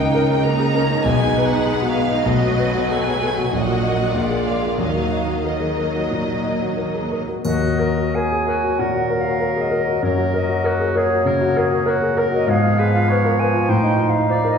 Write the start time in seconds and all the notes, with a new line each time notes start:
Already playing: C#2 C#3 A#3 D#4 A#4 G5
0.00 D#4
0.15 A#4
0.31 D#4
0.44 A#3 D#4 A#4 A#5
0.59 G#4
0.75 C#4 A#4
0.90 D#4
1.05 B1 B2 G#3 B3 D#4 B4 G#5
1.21 D#4
1.36 B4
1.46 F#5
1.52 D#4
1.66 G#4
1.82 F#4
1.87 F5
1.97 G#4
2.12 D#4
2.26 B1 F#3 A3 F#4 B4 D#5
2.41 F#4
2.58 B4
2.75 F#4
2.91 A4 G#5
3.07 G#4
3.22 A4
3.38 F#4
3.52 A#1 A#2 F#3 A#3 F#4 D#5 F#5
3.67 F#4
3.82 D#5
3.98 F#4
4.13 A#1 G#3 A#3 F4 D5
4.30 G#4
4.45 D5 F5
4.62 G#4
4.78 D#2 D#3 F#3 A#3 D#4 D#5 F5
4.96 F#4
5.11 D#5
5.28 F#4
5.44 F#3 A#3 D#4 A#4 D#5
5.60 G#4
5.77 A#4
5.95 F#4
6.11 A#2
6.27 F#4
6.44 D#5
6.61 F#4
6.77 A#4
6.94 G#4
7.11 A#4
7.28 F#4
7.43 D#2 F#3 A#3 F#4 D#5, triangle
7.61 F#4
7.79 A#4
7.97 F#4
8.15 G#4 A#4 G#5
8.32 G#4
8.47 F#4 A#4
8.63 F#4
8.79 A#2 A#4 F#5
8.94 F#4
9.10 A#4
9.21 F#4 F5
9.40 A#4
9.56 G#4
9.61 D#5
9.71 A#4
9.87 F#4
10.03 F#2 A#4 C#5
10.18 F#4
10.34 A#4 D#5
10.49 F#4
10.64 F#4 A#4
10.80 G#4
10.96 G#4 A#4 C#5
11.10 F#4
11.25 C#3 A#4
11.41 F#4
11.57 G#4 A#4
11.71 F#4
11.86 F#4 A#4
12.02 G#4
12.17 A#4
12.32 F#4 D#5
12.47 G#2 F3 B3 G#4 F5
12.63 F4
12.79 G#4 B4
12.95 F4
13.09 B4 C#5
13.25 A#4
13.39 B4 G#5
13.54 F4
13.69 A2 D#4 C5 G5
13.83 D#4
13.98 F4
14.10 F5
14.14 D#4
14.29 C5 D5
14.44 A#4
14.50 D#5